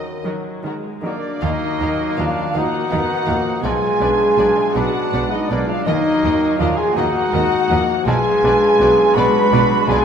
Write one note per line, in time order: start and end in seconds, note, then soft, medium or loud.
0.00 1.42 D#2 soft
0.00 1.36 D#3 soft
0.00 0.21 F#3 soft
0.00 0.86 F#3 medium
0.00 2.82 F#3 soft
0.00 0.62 A#3 medium
0.00 0.25 D#4 soft
0.00 0.25 A#4 soft
0.00 0.86 A#4 medium
0.00 1.79 A#4 soft
0.00 0.24 D#5 medium
0.24 0.32 D#3 medium
0.24 0.61 F#3 medium
0.24 0.60 F#3 soft
0.24 0.60 D#4 soft
0.24 0.34 F#4 soft
0.24 0.60 A#4 soft
0.24 0.33 A#4 soft
0.63 0.71 D#3 medium
0.63 1.04 G#3 medium
0.63 1.00 D#4 soft
0.63 0.74 F#4 soft
0.63 1.00 A#4 soft
0.63 0.74 A#4 soft
1.02 1.10 D#3 soft
1.02 1.39 F#3 soft
1.02 1.40 A#3 soft
1.02 1.43 A#3 medium
1.02 1.40 D4 medium
1.02 1.39 D#4 soft
1.02 1.14 F#4 soft
1.02 1.39 A#4 soft
1.02 1.14 A#4 soft
1.02 1.39 D5 medium
1.02 1.41 D5 medium
1.41 1.79 D#2 medium
1.41 1.51 D#2 medium
1.41 3.67 D#3 medium
1.41 1.50 D#3 medium
1.41 2.51 F#3 medium
1.41 2.20 A#3 medium
1.41 2.18 D#4 medium
1.41 2.18 D#5 medium
1.41 2.19 D#5 medium
1.41 1.49 F5 medium
1.80 1.88 D#2 medium
1.80 1.88 D#3 medium
1.80 2.15 D#4 soft
1.80 2.90 A#4 soft
1.80 2.15 A#4 medium
1.80 1.89 F5 medium
2.17 2.26 D#2 medium
2.17 2.25 D#3 medium
2.17 2.53 D#3 soft
2.17 2.52 F3 soft
2.17 2.58 D4 medium
2.17 2.56 F4 medium
2.17 2.53 A#4 soft
2.17 2.25 F5 medium
2.17 2.55 F5 medium
2.17 2.56 F5 medium
2.37 3.68 A#5 medium
2.54 2.63 D#2 medium
2.54 2.62 D#3 medium
2.54 2.89 F3 soft
2.54 2.92 A#3 medium
2.54 3.63 D#4 medium
2.54 2.89 D#4 soft
2.54 3.65 F#4 medium
2.54 2.89 A#4 soft
2.54 2.62 F5 medium
2.54 3.65 F#5 medium
2.54 3.66 F#5 medium
2.73 3.67 D#5 soft
2.90 3.00 D#2 medium
2.90 2.99 D#3 medium
2.90 3.28 B3 medium
2.90 3.25 D#4 soft
2.90 3.67 A#4 medium
2.90 3.25 A#4 soft
2.90 2.98 F5 medium
3.10 3.44 D#4 soft
3.26 3.36 D#2 medium
3.26 3.35 D#3 medium
3.26 3.67 F3 soft
3.26 3.61 F3 soft
3.26 3.64 A#3 medium
3.26 3.62 D#4 soft
3.26 3.62 A#4 soft
3.26 3.34 F5 medium
3.46 3.67 D#4 soft
3.63 3.72 B1 medium
3.63 4.01 B1 medium
3.63 3.71 B2 medium
3.63 5.91 B2 medium
3.63 5.88 G#3 medium
3.63 4.78 F4 medium
3.63 4.74 G#4 medium
3.63 3.72 D5 medium
3.63 4.74 G#5 medium
3.82 5.31 F#3 soft
3.99 4.09 B1 medium
3.99 4.08 B2 medium
3.99 5.12 D4 soft
3.99 4.35 D4 medium
3.99 4.35 B4 soft
3.99 4.09 D5 medium
4.18 5.90 B4 medium
4.37 4.47 B1 medium
4.37 4.45 B2 medium
4.37 4.73 F#3 soft
4.37 4.73 D4 soft
4.37 4.74 B4 soft
4.37 4.46 D5 medium
4.56 5.90 D5 medium
4.75 4.85 B1 medium
4.75 4.83 B2 medium
4.75 5.10 F#3 soft
4.75 5.32 D4 medium
4.75 5.11 D4 medium
4.75 5.33 F#4 medium
4.75 5.11 B4 medium
4.75 4.84 D5 soft
4.75 5.32 F#5 medium
4.75 5.33 F#5 medium
4.75 5.90 B5 soft
5.12 5.22 B1 medium
5.12 5.20 B2 medium
5.12 5.91 D4 medium
5.12 5.48 D4 soft
5.12 5.48 B4 medium
5.12 5.21 D5 medium
5.31 5.68 F#3 medium
5.31 5.53 B3 medium
5.31 5.51 D#4 medium
5.31 5.51 D#5 medium
5.49 5.59 B1 medium
5.49 5.58 B2 medium
5.49 5.85 F#3 soft
5.49 5.70 A#3 medium
5.49 5.90 B3 medium
5.49 5.69 D4 medium
5.49 5.85 D4 soft
5.49 5.85 B4 soft
5.49 5.69 D5 medium
5.49 5.70 D5 medium
5.49 5.60 D5 medium
5.68 8.24 F#3 medium
5.68 5.89 D4 medium
5.68 5.87 F4 medium
5.68 5.88 F5 medium
5.86 5.96 D#2 medium
5.86 6.23 D#2 medium
5.86 8.09 D#3 medium
5.86 5.95 D#3 medium
5.86 6.97 F#3 medium
5.86 6.60 A#3 medium
5.86 6.58 D#4 medium
5.86 6.58 D#5 medium
5.86 5.96 D#5 medium
5.86 6.61 D#5 medium
6.06 7.50 D#4 medium
6.23 6.33 D#2 medium
6.23 6.31 D#3 medium
6.23 6.57 D#4 medium
6.23 7.32 A#4 soft
6.23 6.57 A#4 medium
6.23 6.34 D#5 medium
6.56 6.67 D#3 medium
6.56 6.79 D4 medium
6.56 6.77 F4 medium
6.56 7.13 D#5 medium
6.56 6.78 F5 medium
6.60 6.69 D#2 medium
6.60 6.93 F3 medium
6.60 6.94 D#4 soft
6.60 6.94 A#4 medium
6.60 6.69 D#5 medium
6.60 6.79 F5 medium
6.76 6.94 F4 medium
6.76 6.96 G#4 medium
6.76 6.96 G#5 medium
6.76 6.97 G#5 medium
6.76 8.10 A#5 medium
6.94 7.06 D#2 medium
6.94 7.04 D#3 medium
6.94 7.30 F3 medium
6.94 7.33 A#3 medium
6.94 7.77 D#4 medium
6.94 7.30 D#4 medium
6.94 8.06 F#4 loud
6.94 7.30 A#4 medium
6.94 8.06 F#5 medium
6.94 8.10 F#5 medium
6.94 7.84 F#5 medium
6.98 7.06 D#5 medium
7.14 8.10 D#5 soft
7.32 7.42 D#2 medium
7.32 7.41 D#3 medium
7.32 7.69 G#3 medium
7.32 7.66 D#4 medium
7.32 7.67 A#4 medium
7.32 8.10 A#4 medium
7.32 7.42 D#5 medium
7.51 7.87 D#4 medium
7.69 7.79 D#2 medium
7.69 7.77 D#3 medium
7.69 8.04 F3 soft
7.69 8.10 F3 medium
7.69 8.07 A#3 medium
7.69 8.04 D#4 medium
7.69 8.04 A#4 soft
7.69 7.81 D#5 medium
7.89 8.10 D#4 soft
8.06 8.15 B1 medium
8.06 8.43 B1 medium
8.06 8.14 B2 medium
8.06 10.05 B2 medium
8.06 10.05 G#3 medium
8.06 9.16 F4 medium
8.06 9.16 G#4 loud
8.06 8.15 D5 medium
8.06 9.14 G#5 medium
8.25 9.68 F#3 medium
8.43 8.52 B1 medium
8.43 8.51 B2 medium
8.43 9.50 D4 medium
8.43 8.77 D4 medium
8.43 8.77 B4 medium
8.43 8.54 D5 medium
8.61 10.05 B4 medium
8.79 8.89 B1 medium
8.79 8.87 B2 medium
8.79 9.13 F#3 medium
8.79 9.13 D4 medium
8.79 9.13 B4 medium
8.79 8.89 D5 medium
8.97 10.05 D5 medium
9.14 9.25 B1 medium
9.14 9.24 B2 medium
9.14 9.49 F#3 medium
9.14 9.49 D4 medium
9.14 9.90 F#4 medium
9.14 9.71 B4 loud
9.14 9.49 B4 medium
9.14 9.26 D5 medium
9.14 10.05 B5 medium
9.14 9.88 B5 medium
9.14 9.89 B5 loud
9.52 9.60 B1 medium
9.52 9.61 B2 medium
9.52 10.05 D4 medium
9.52 9.85 D4 medium
9.52 9.85 B4 medium
9.52 9.62 D5 medium
9.70 10.04 F#3 medium
9.87 9.96 B1 medium
9.87 9.96 B2 medium
9.87 10.05 F#3 medium
9.87 10.05 B3 medium
9.87 10.05 D4 medium
9.87 10.05 F4 medium
9.87 10.05 G#4 loud
9.87 10.05 B4 medium
9.87 9.99 D5 medium
9.87 10.05 G#5 medium